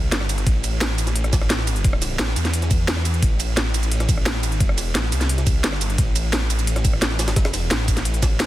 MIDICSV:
0, 0, Header, 1, 3, 480
1, 0, Start_track
1, 0, Key_signature, 0, "minor"
1, 0, Tempo, 344828
1, 649, Time_signature, 4, 2, 24, 8
1, 11780, End_track
2, 0, Start_track
2, 0, Title_t, "Detuned saw bass"
2, 0, Program_c, 0, 39
2, 0, Note_on_c, 0, 36, 97
2, 149, Note_off_c, 0, 36, 0
2, 168, Note_on_c, 0, 31, 98
2, 629, Note_off_c, 0, 31, 0
2, 649, Note_on_c, 0, 33, 94
2, 1109, Note_off_c, 0, 33, 0
2, 1129, Note_on_c, 0, 33, 100
2, 3030, Note_off_c, 0, 33, 0
2, 3048, Note_on_c, 0, 33, 101
2, 3269, Note_off_c, 0, 33, 0
2, 3289, Note_on_c, 0, 40, 97
2, 4469, Note_off_c, 0, 40, 0
2, 4490, Note_on_c, 0, 33, 98
2, 4950, Note_off_c, 0, 33, 0
2, 4970, Note_on_c, 0, 33, 99
2, 6348, Note_off_c, 0, 33, 0
2, 6348, Note_on_c, 0, 31, 99
2, 6654, Note_off_c, 0, 31, 0
2, 6654, Note_on_c, 0, 29, 99
2, 6870, Note_off_c, 0, 29, 0
2, 6888, Note_on_c, 0, 33, 98
2, 7109, Note_off_c, 0, 33, 0
2, 7128, Note_on_c, 0, 36, 103
2, 7829, Note_off_c, 0, 36, 0
2, 7849, Note_on_c, 0, 31, 99
2, 8310, Note_off_c, 0, 31, 0
2, 8330, Note_on_c, 0, 33, 98
2, 8790, Note_off_c, 0, 33, 0
2, 8809, Note_on_c, 0, 33, 101
2, 10187, Note_off_c, 0, 33, 0
2, 10187, Note_on_c, 0, 31, 101
2, 10494, Note_off_c, 0, 31, 0
2, 10494, Note_on_c, 0, 29, 101
2, 10710, Note_off_c, 0, 29, 0
2, 10729, Note_on_c, 0, 33, 99
2, 10950, Note_off_c, 0, 33, 0
2, 10970, Note_on_c, 0, 33, 99
2, 11670, Note_off_c, 0, 33, 0
2, 11780, End_track
3, 0, Start_track
3, 0, Title_t, "Drums"
3, 169, Note_on_c, 9, 38, 127
3, 169, Note_on_c, 9, 42, 99
3, 169, Note_on_c, 9, 51, 94
3, 288, Note_on_c, 9, 37, 41
3, 289, Note_off_c, 9, 38, 0
3, 289, Note_on_c, 9, 38, 39
3, 308, Note_off_c, 9, 42, 0
3, 308, Note_off_c, 9, 51, 0
3, 408, Note_on_c, 9, 42, 68
3, 408, Note_on_c, 9, 51, 71
3, 408, Note_on_c, 9, 82, 56
3, 409, Note_off_c, 9, 51, 0
3, 409, Note_on_c, 9, 51, 71
3, 427, Note_off_c, 9, 37, 0
3, 428, Note_off_c, 9, 38, 0
3, 528, Note_off_c, 9, 42, 0
3, 528, Note_on_c, 9, 42, 38
3, 547, Note_off_c, 9, 82, 0
3, 548, Note_off_c, 9, 51, 0
3, 648, Note_on_c, 9, 36, 127
3, 648, Note_on_c, 9, 51, 92
3, 649, Note_off_c, 9, 42, 0
3, 649, Note_on_c, 9, 42, 92
3, 787, Note_off_c, 9, 51, 0
3, 788, Note_off_c, 9, 36, 0
3, 788, Note_off_c, 9, 42, 0
3, 888, Note_on_c, 9, 51, 67
3, 889, Note_off_c, 9, 51, 0
3, 889, Note_on_c, 9, 42, 67
3, 889, Note_on_c, 9, 51, 78
3, 889, Note_on_c, 9, 82, 61
3, 1028, Note_off_c, 9, 42, 0
3, 1028, Note_off_c, 9, 51, 0
3, 1028, Note_off_c, 9, 82, 0
3, 1128, Note_on_c, 9, 38, 123
3, 1128, Note_on_c, 9, 51, 92
3, 1129, Note_off_c, 9, 38, 0
3, 1129, Note_on_c, 9, 38, 123
3, 1129, Note_on_c, 9, 42, 92
3, 1267, Note_off_c, 9, 51, 0
3, 1268, Note_off_c, 9, 38, 0
3, 1268, Note_off_c, 9, 42, 0
3, 1367, Note_on_c, 9, 51, 79
3, 1368, Note_off_c, 9, 51, 0
3, 1368, Note_on_c, 9, 42, 65
3, 1368, Note_on_c, 9, 51, 73
3, 1368, Note_on_c, 9, 82, 58
3, 1488, Note_on_c, 9, 38, 50
3, 1489, Note_off_c, 9, 42, 0
3, 1489, Note_off_c, 9, 82, 0
3, 1489, Note_on_c, 9, 42, 38
3, 1489, Note_on_c, 9, 82, 27
3, 1507, Note_off_c, 9, 51, 0
3, 1608, Note_on_c, 9, 51, 62
3, 1609, Note_off_c, 9, 42, 0
3, 1609, Note_on_c, 9, 42, 96
3, 1627, Note_off_c, 9, 38, 0
3, 1628, Note_off_c, 9, 82, 0
3, 1729, Note_off_c, 9, 42, 0
3, 1729, Note_on_c, 9, 37, 36
3, 1729, Note_on_c, 9, 42, 38
3, 1747, Note_off_c, 9, 51, 0
3, 1848, Note_on_c, 9, 36, 109
3, 1848, Note_on_c, 9, 38, 107
3, 1848, Note_on_c, 9, 51, 80
3, 1849, Note_off_c, 9, 42, 0
3, 1849, Note_off_c, 9, 51, 0
3, 1849, Note_on_c, 9, 42, 68
3, 1849, Note_on_c, 9, 51, 73
3, 1849, Note_on_c, 9, 82, 58
3, 1868, Note_off_c, 9, 37, 0
3, 1969, Note_off_c, 9, 38, 0
3, 1969, Note_on_c, 9, 37, 36
3, 1969, Note_on_c, 9, 38, 53
3, 1987, Note_off_c, 9, 36, 0
3, 1989, Note_off_c, 9, 42, 0
3, 1989, Note_off_c, 9, 51, 0
3, 1989, Note_off_c, 9, 82, 0
3, 2088, Note_off_c, 9, 38, 0
3, 2088, Note_on_c, 9, 38, 123
3, 2088, Note_on_c, 9, 51, 94
3, 2089, Note_off_c, 9, 38, 0
3, 2089, Note_on_c, 9, 38, 126
3, 2089, Note_on_c, 9, 42, 91
3, 2108, Note_off_c, 9, 37, 0
3, 2208, Note_off_c, 9, 38, 0
3, 2208, Note_on_c, 9, 38, 59
3, 2228, Note_off_c, 9, 42, 0
3, 2228, Note_off_c, 9, 51, 0
3, 2329, Note_on_c, 9, 42, 65
3, 2329, Note_on_c, 9, 51, 70
3, 2329, Note_on_c, 9, 82, 55
3, 2347, Note_off_c, 9, 38, 0
3, 2448, Note_off_c, 9, 42, 0
3, 2448, Note_on_c, 9, 42, 36
3, 2468, Note_off_c, 9, 51, 0
3, 2468, Note_off_c, 9, 82, 0
3, 2568, Note_off_c, 9, 42, 0
3, 2568, Note_on_c, 9, 36, 127
3, 2568, Note_on_c, 9, 42, 94
3, 2569, Note_on_c, 9, 51, 90
3, 2688, Note_on_c, 9, 37, 56
3, 2707, Note_off_c, 9, 36, 0
3, 2707, Note_off_c, 9, 42, 0
3, 2708, Note_off_c, 9, 51, 0
3, 2809, Note_on_c, 9, 38, 46
3, 2809, Note_on_c, 9, 42, 66
3, 2809, Note_on_c, 9, 46, 79
3, 2809, Note_on_c, 9, 51, 80
3, 2809, Note_on_c, 9, 82, 61
3, 2827, Note_off_c, 9, 37, 0
3, 2948, Note_off_c, 9, 38, 0
3, 2948, Note_off_c, 9, 42, 0
3, 2948, Note_off_c, 9, 46, 0
3, 2948, Note_off_c, 9, 51, 0
3, 2948, Note_off_c, 9, 82, 0
3, 3049, Note_on_c, 9, 38, 123
3, 3049, Note_on_c, 9, 51, 89
3, 3050, Note_off_c, 9, 38, 0
3, 3050, Note_on_c, 9, 38, 123
3, 3050, Note_on_c, 9, 42, 89
3, 3169, Note_off_c, 9, 38, 0
3, 3169, Note_on_c, 9, 38, 51
3, 3188, Note_off_c, 9, 51, 0
3, 3189, Note_off_c, 9, 42, 0
3, 3289, Note_on_c, 9, 42, 65
3, 3289, Note_on_c, 9, 51, 77
3, 3289, Note_on_c, 9, 82, 57
3, 3290, Note_off_c, 9, 51, 0
3, 3290, Note_on_c, 9, 51, 67
3, 3309, Note_off_c, 9, 38, 0
3, 3409, Note_off_c, 9, 42, 0
3, 3409, Note_off_c, 9, 82, 0
3, 3409, Note_on_c, 9, 38, 41
3, 3409, Note_on_c, 9, 42, 35
3, 3409, Note_on_c, 9, 82, 28
3, 3429, Note_off_c, 9, 51, 0
3, 3529, Note_off_c, 9, 42, 0
3, 3529, Note_on_c, 9, 42, 91
3, 3529, Note_on_c, 9, 51, 92
3, 3548, Note_off_c, 9, 38, 0
3, 3548, Note_off_c, 9, 82, 0
3, 3650, Note_off_c, 9, 42, 0
3, 3650, Note_on_c, 9, 38, 44
3, 3650, Note_on_c, 9, 42, 37
3, 3668, Note_off_c, 9, 51, 0
3, 3769, Note_off_c, 9, 42, 0
3, 3769, Note_on_c, 9, 36, 110
3, 3769, Note_on_c, 9, 42, 64
3, 3769, Note_on_c, 9, 51, 77
3, 3769, Note_on_c, 9, 82, 57
3, 3770, Note_off_c, 9, 51, 0
3, 3770, Note_on_c, 9, 51, 70
3, 3789, Note_off_c, 9, 38, 0
3, 3908, Note_off_c, 9, 36, 0
3, 3908, Note_off_c, 9, 42, 0
3, 3908, Note_off_c, 9, 82, 0
3, 3909, Note_off_c, 9, 51, 0
3, 4009, Note_on_c, 9, 38, 122
3, 4009, Note_on_c, 9, 42, 88
3, 4010, Note_off_c, 9, 38, 0
3, 4010, Note_on_c, 9, 38, 123
3, 4010, Note_on_c, 9, 51, 92
3, 4130, Note_off_c, 9, 38, 0
3, 4130, Note_on_c, 9, 37, 36
3, 4130, Note_on_c, 9, 38, 38
3, 4149, Note_off_c, 9, 42, 0
3, 4149, Note_off_c, 9, 51, 0
3, 4250, Note_on_c, 9, 42, 64
3, 4250, Note_on_c, 9, 51, 69
3, 4250, Note_on_c, 9, 82, 58
3, 4269, Note_off_c, 9, 37, 0
3, 4269, Note_off_c, 9, 38, 0
3, 4370, Note_off_c, 9, 42, 0
3, 4370, Note_on_c, 9, 42, 36
3, 4389, Note_off_c, 9, 51, 0
3, 4389, Note_off_c, 9, 82, 0
3, 4489, Note_on_c, 9, 36, 121
3, 4490, Note_off_c, 9, 42, 0
3, 4490, Note_on_c, 9, 42, 93
3, 4491, Note_on_c, 9, 51, 94
3, 4628, Note_off_c, 9, 36, 0
3, 4629, Note_off_c, 9, 42, 0
3, 4630, Note_off_c, 9, 51, 0
3, 4729, Note_on_c, 9, 42, 66
3, 4729, Note_on_c, 9, 51, 80
3, 4729, Note_on_c, 9, 82, 61
3, 4730, Note_off_c, 9, 51, 0
3, 4730, Note_on_c, 9, 51, 71
3, 4868, Note_off_c, 9, 42, 0
3, 4868, Note_off_c, 9, 82, 0
3, 4870, Note_off_c, 9, 51, 0
3, 4969, Note_on_c, 9, 38, 121
3, 4969, Note_on_c, 9, 42, 90
3, 4970, Note_off_c, 9, 38, 0
3, 4970, Note_on_c, 9, 38, 119
3, 4970, Note_on_c, 9, 51, 92
3, 5109, Note_off_c, 9, 38, 0
3, 5109, Note_off_c, 9, 42, 0
3, 5109, Note_off_c, 9, 51, 0
3, 5210, Note_on_c, 9, 42, 66
3, 5210, Note_on_c, 9, 51, 77
3, 5210, Note_on_c, 9, 82, 59
3, 5331, Note_off_c, 9, 42, 0
3, 5331, Note_off_c, 9, 82, 0
3, 5331, Note_on_c, 9, 42, 36
3, 5331, Note_on_c, 9, 82, 28
3, 5349, Note_off_c, 9, 51, 0
3, 5449, Note_on_c, 9, 51, 90
3, 5451, Note_off_c, 9, 42, 0
3, 5451, Note_on_c, 9, 42, 93
3, 5470, Note_off_c, 9, 82, 0
3, 5569, Note_on_c, 9, 38, 54
3, 5571, Note_off_c, 9, 42, 0
3, 5571, Note_on_c, 9, 37, 33
3, 5571, Note_on_c, 9, 42, 38
3, 5589, Note_off_c, 9, 51, 0
3, 5689, Note_on_c, 9, 36, 108
3, 5690, Note_on_c, 9, 51, 69
3, 5691, Note_off_c, 9, 42, 0
3, 5691, Note_off_c, 9, 51, 0
3, 5691, Note_on_c, 9, 42, 67
3, 5691, Note_on_c, 9, 51, 79
3, 5691, Note_on_c, 9, 82, 63
3, 5708, Note_off_c, 9, 38, 0
3, 5710, Note_off_c, 9, 37, 0
3, 5811, Note_on_c, 9, 37, 35
3, 5828, Note_off_c, 9, 36, 0
3, 5830, Note_off_c, 9, 42, 0
3, 5830, Note_off_c, 9, 51, 0
3, 5830, Note_off_c, 9, 82, 0
3, 5929, Note_on_c, 9, 38, 119
3, 5929, Note_on_c, 9, 51, 93
3, 5931, Note_off_c, 9, 38, 0
3, 5931, Note_on_c, 9, 38, 124
3, 5931, Note_on_c, 9, 42, 94
3, 5950, Note_off_c, 9, 37, 0
3, 6049, Note_off_c, 9, 38, 0
3, 6049, Note_on_c, 9, 38, 59
3, 6068, Note_off_c, 9, 51, 0
3, 6070, Note_off_c, 9, 42, 0
3, 6169, Note_on_c, 9, 51, 69
3, 6171, Note_off_c, 9, 51, 0
3, 6171, Note_on_c, 9, 42, 63
3, 6171, Note_on_c, 9, 51, 77
3, 6171, Note_on_c, 9, 82, 61
3, 6188, Note_off_c, 9, 38, 0
3, 6291, Note_off_c, 9, 42, 0
3, 6291, Note_on_c, 9, 42, 36
3, 6310, Note_off_c, 9, 51, 0
3, 6310, Note_off_c, 9, 82, 0
3, 6409, Note_on_c, 9, 36, 120
3, 6409, Note_on_c, 9, 51, 95
3, 6411, Note_off_c, 9, 42, 0
3, 6411, Note_on_c, 9, 42, 97
3, 6531, Note_on_c, 9, 37, 55
3, 6548, Note_off_c, 9, 36, 0
3, 6548, Note_off_c, 9, 51, 0
3, 6550, Note_off_c, 9, 42, 0
3, 6649, Note_on_c, 9, 38, 47
3, 6649, Note_on_c, 9, 46, 81
3, 6651, Note_on_c, 9, 42, 66
3, 6651, Note_on_c, 9, 51, 83
3, 6651, Note_on_c, 9, 82, 65
3, 6670, Note_off_c, 9, 37, 0
3, 6788, Note_off_c, 9, 38, 0
3, 6788, Note_off_c, 9, 46, 0
3, 6790, Note_off_c, 9, 42, 0
3, 6790, Note_off_c, 9, 51, 0
3, 6790, Note_off_c, 9, 82, 0
3, 6888, Note_on_c, 9, 38, 126
3, 6888, Note_on_c, 9, 51, 93
3, 6890, Note_off_c, 9, 38, 0
3, 6890, Note_on_c, 9, 38, 112
3, 6890, Note_on_c, 9, 42, 93
3, 7009, Note_off_c, 9, 38, 0
3, 7009, Note_on_c, 9, 38, 47
3, 7028, Note_off_c, 9, 51, 0
3, 7029, Note_off_c, 9, 42, 0
3, 7128, Note_on_c, 9, 51, 70
3, 7130, Note_off_c, 9, 51, 0
3, 7130, Note_on_c, 9, 42, 66
3, 7130, Note_on_c, 9, 51, 77
3, 7130, Note_on_c, 9, 82, 63
3, 7148, Note_off_c, 9, 38, 0
3, 7250, Note_off_c, 9, 42, 0
3, 7250, Note_off_c, 9, 82, 0
3, 7250, Note_on_c, 9, 38, 37
3, 7250, Note_on_c, 9, 42, 39
3, 7250, Note_on_c, 9, 82, 29
3, 7269, Note_off_c, 9, 51, 0
3, 7368, Note_on_c, 9, 51, 91
3, 7370, Note_off_c, 9, 42, 0
3, 7370, Note_on_c, 9, 42, 94
3, 7389, Note_off_c, 9, 38, 0
3, 7389, Note_off_c, 9, 82, 0
3, 7489, Note_on_c, 9, 38, 44
3, 7490, Note_off_c, 9, 42, 0
3, 7490, Note_on_c, 9, 42, 39
3, 7507, Note_off_c, 9, 51, 0
3, 7609, Note_off_c, 9, 42, 0
3, 7609, Note_on_c, 9, 36, 105
3, 7609, Note_on_c, 9, 42, 70
3, 7609, Note_on_c, 9, 51, 78
3, 7609, Note_on_c, 9, 82, 62
3, 7628, Note_off_c, 9, 38, 0
3, 7748, Note_off_c, 9, 36, 0
3, 7749, Note_off_c, 9, 42, 0
3, 7749, Note_off_c, 9, 51, 0
3, 7749, Note_off_c, 9, 82, 0
3, 7848, Note_on_c, 9, 38, 127
3, 7848, Note_on_c, 9, 51, 93
3, 7849, Note_off_c, 9, 38, 0
3, 7849, Note_on_c, 9, 38, 119
3, 7849, Note_on_c, 9, 42, 93
3, 7969, Note_off_c, 9, 38, 0
3, 7969, Note_on_c, 9, 37, 35
3, 7969, Note_on_c, 9, 38, 39
3, 7987, Note_off_c, 9, 51, 0
3, 7988, Note_off_c, 9, 42, 0
3, 8089, Note_on_c, 9, 42, 68
3, 8089, Note_on_c, 9, 51, 77
3, 8089, Note_on_c, 9, 82, 65
3, 8108, Note_off_c, 9, 37, 0
3, 8108, Note_off_c, 9, 38, 0
3, 8210, Note_off_c, 9, 42, 0
3, 8210, Note_on_c, 9, 42, 36
3, 8229, Note_off_c, 9, 51, 0
3, 8229, Note_off_c, 9, 82, 0
3, 8329, Note_on_c, 9, 36, 116
3, 8329, Note_on_c, 9, 51, 96
3, 8330, Note_off_c, 9, 42, 0
3, 8330, Note_on_c, 9, 42, 101
3, 8468, Note_off_c, 9, 36, 0
3, 8469, Note_off_c, 9, 42, 0
3, 8469, Note_off_c, 9, 51, 0
3, 8569, Note_on_c, 9, 42, 72
3, 8569, Note_on_c, 9, 51, 78
3, 8569, Note_on_c, 9, 82, 66
3, 8570, Note_off_c, 9, 51, 0
3, 8570, Note_on_c, 9, 51, 72
3, 8709, Note_off_c, 9, 42, 0
3, 8709, Note_off_c, 9, 51, 0
3, 8709, Note_off_c, 9, 82, 0
3, 8810, Note_on_c, 9, 38, 115
3, 8810, Note_on_c, 9, 42, 97
3, 8810, Note_on_c, 9, 51, 90
3, 8949, Note_off_c, 9, 38, 0
3, 8949, Note_off_c, 9, 42, 0
3, 8949, Note_off_c, 9, 51, 0
3, 9049, Note_on_c, 9, 51, 70
3, 9050, Note_off_c, 9, 51, 0
3, 9050, Note_on_c, 9, 42, 71
3, 9050, Note_on_c, 9, 51, 76
3, 9050, Note_on_c, 9, 82, 64
3, 9170, Note_off_c, 9, 42, 0
3, 9170, Note_off_c, 9, 82, 0
3, 9170, Note_on_c, 9, 42, 40
3, 9170, Note_on_c, 9, 82, 30
3, 9189, Note_off_c, 9, 51, 0
3, 9289, Note_off_c, 9, 42, 0
3, 9289, Note_on_c, 9, 42, 99
3, 9289, Note_on_c, 9, 51, 89
3, 9310, Note_off_c, 9, 82, 0
3, 9410, Note_on_c, 9, 38, 56
3, 9411, Note_off_c, 9, 42, 0
3, 9411, Note_on_c, 9, 37, 33
3, 9411, Note_on_c, 9, 42, 39
3, 9429, Note_off_c, 9, 51, 0
3, 9529, Note_on_c, 9, 36, 101
3, 9530, Note_on_c, 9, 51, 70
3, 9531, Note_off_c, 9, 42, 0
3, 9531, Note_off_c, 9, 51, 0
3, 9531, Note_on_c, 9, 42, 68
3, 9531, Note_on_c, 9, 51, 78
3, 9531, Note_on_c, 9, 82, 65
3, 9549, Note_off_c, 9, 38, 0
3, 9550, Note_off_c, 9, 37, 0
3, 9652, Note_on_c, 9, 37, 35
3, 9669, Note_off_c, 9, 36, 0
3, 9670, Note_off_c, 9, 42, 0
3, 9670, Note_off_c, 9, 51, 0
3, 9670, Note_off_c, 9, 82, 0
3, 9770, Note_on_c, 9, 38, 124
3, 9770, Note_on_c, 9, 42, 100
3, 9770, Note_on_c, 9, 51, 93
3, 9791, Note_off_c, 9, 37, 0
3, 9891, Note_off_c, 9, 38, 0
3, 9891, Note_on_c, 9, 38, 58
3, 9910, Note_off_c, 9, 42, 0
3, 9910, Note_off_c, 9, 51, 0
3, 10010, Note_off_c, 9, 38, 0
3, 10010, Note_on_c, 9, 38, 104
3, 10010, Note_on_c, 9, 51, 84
3, 10012, Note_off_c, 9, 51, 0
3, 10012, Note_on_c, 9, 42, 69
3, 10012, Note_on_c, 9, 51, 77
3, 10012, Note_on_c, 9, 82, 64
3, 10129, Note_off_c, 9, 38, 0
3, 10129, Note_off_c, 9, 51, 0
3, 10129, Note_on_c, 9, 38, 108
3, 10129, Note_on_c, 9, 51, 85
3, 10132, Note_off_c, 9, 42, 0
3, 10132, Note_on_c, 9, 42, 39
3, 10151, Note_off_c, 9, 82, 0
3, 10250, Note_off_c, 9, 38, 0
3, 10250, Note_off_c, 9, 51, 0
3, 10250, Note_on_c, 9, 36, 113
3, 10250, Note_on_c, 9, 38, 107
3, 10250, Note_on_c, 9, 51, 85
3, 10252, Note_off_c, 9, 42, 0
3, 10252, Note_on_c, 9, 42, 101
3, 10370, Note_off_c, 9, 38, 0
3, 10370, Note_off_c, 9, 51, 0
3, 10370, Note_on_c, 9, 38, 106
3, 10370, Note_on_c, 9, 51, 80
3, 10371, Note_on_c, 9, 37, 61
3, 10389, Note_off_c, 9, 36, 0
3, 10391, Note_off_c, 9, 42, 0
3, 10490, Note_off_c, 9, 38, 0
3, 10490, Note_on_c, 9, 38, 47
3, 10490, Note_on_c, 9, 46, 82
3, 10491, Note_off_c, 9, 51, 0
3, 10491, Note_on_c, 9, 42, 73
3, 10491, Note_on_c, 9, 51, 79
3, 10491, Note_on_c, 9, 82, 64
3, 10511, Note_off_c, 9, 37, 0
3, 10629, Note_off_c, 9, 38, 0
3, 10629, Note_off_c, 9, 46, 0
3, 10631, Note_off_c, 9, 42, 0
3, 10631, Note_off_c, 9, 51, 0
3, 10631, Note_off_c, 9, 82, 0
3, 10729, Note_on_c, 9, 38, 123
3, 10729, Note_on_c, 9, 51, 94
3, 10730, Note_off_c, 9, 38, 0
3, 10730, Note_on_c, 9, 38, 116
3, 10730, Note_on_c, 9, 42, 97
3, 10850, Note_off_c, 9, 38, 0
3, 10850, Note_on_c, 9, 38, 49
3, 10869, Note_off_c, 9, 42, 0
3, 10869, Note_off_c, 9, 51, 0
3, 10969, Note_on_c, 9, 36, 60
3, 10970, Note_on_c, 9, 42, 71
3, 10970, Note_on_c, 9, 51, 75
3, 10970, Note_on_c, 9, 82, 62
3, 10990, Note_off_c, 9, 38, 0
3, 11090, Note_off_c, 9, 42, 0
3, 11090, Note_off_c, 9, 82, 0
3, 11090, Note_on_c, 9, 38, 37
3, 11090, Note_on_c, 9, 42, 39
3, 11090, Note_on_c, 9, 82, 30
3, 11109, Note_off_c, 9, 36, 0
3, 11110, Note_off_c, 9, 51, 0
3, 11210, Note_on_c, 9, 51, 85
3, 11211, Note_off_c, 9, 42, 0
3, 11211, Note_off_c, 9, 82, 0
3, 11211, Note_on_c, 9, 42, 102
3, 11211, Note_on_c, 9, 82, 30
3, 11229, Note_off_c, 9, 38, 0
3, 11331, Note_off_c, 9, 42, 0
3, 11331, Note_on_c, 9, 42, 40
3, 11349, Note_off_c, 9, 51, 0
3, 11350, Note_off_c, 9, 82, 0
3, 11449, Note_on_c, 9, 36, 102
3, 11449, Note_on_c, 9, 38, 103
3, 11449, Note_on_c, 9, 51, 82
3, 11450, Note_off_c, 9, 42, 0
3, 11450, Note_off_c, 9, 51, 0
3, 11450, Note_on_c, 9, 42, 70
3, 11450, Note_on_c, 9, 51, 75
3, 11450, Note_on_c, 9, 82, 66
3, 11589, Note_off_c, 9, 36, 0
3, 11589, Note_off_c, 9, 38, 0
3, 11589, Note_off_c, 9, 42, 0
3, 11589, Note_off_c, 9, 51, 0
3, 11589, Note_off_c, 9, 82, 0
3, 11689, Note_on_c, 9, 38, 94
3, 11689, Note_on_c, 9, 51, 71
3, 11691, Note_off_c, 9, 38, 0
3, 11691, Note_on_c, 9, 38, 116
3, 11691, Note_on_c, 9, 42, 97
3, 11780, Note_off_c, 9, 38, 0
3, 11780, Note_off_c, 9, 42, 0
3, 11780, Note_off_c, 9, 51, 0
3, 11780, End_track
0, 0, End_of_file